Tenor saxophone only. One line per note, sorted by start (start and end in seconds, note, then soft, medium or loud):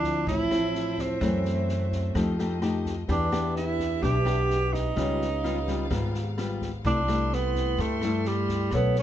0.00 0.25 D4 medium
0.28 1.02 E4 medium
1.01 2.40 C4 medium
3.11 3.54 D4 medium
3.57 4.04 E4 medium
4.03 4.75 G4 medium
4.73 6.14 D#4 medium
6.86 7.36 D4 loud
7.34 7.82 B3 medium
7.81 8.29 A3 medium
8.27 8.77 G3 medium
8.76 8.98 B3 medium
8.99 9.03 C#4 medium